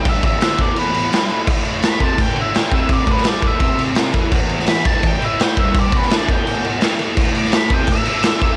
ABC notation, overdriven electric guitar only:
X:1
M:4/4
L:1/8
Q:1/4=168
K:Em
V:1 name="Overdriven electric guitar" clef=bass
G,, E,, D, E,,3 G,, z | A,,3 C, A,, D,2 C,- | C, A,, G, A,, C,3 E, | E,,3 G,, E,, A,,2 G,,- |
G,, E,, D, E,,3 G,, z | A,,3 C, A,, D,2 C, |]